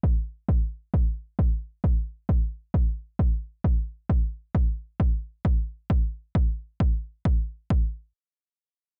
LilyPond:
\new DrumStaff \with { instrumentName = "Drums" } \drummode { \time 4/4 \tempo 4 = 133 bd4 bd4 bd4 bd4 | bd4 bd4 bd4 bd4 | bd4 bd4 bd4 bd4 | bd4 bd4 bd4 bd4 |
bd4 bd4 r4 r4 | }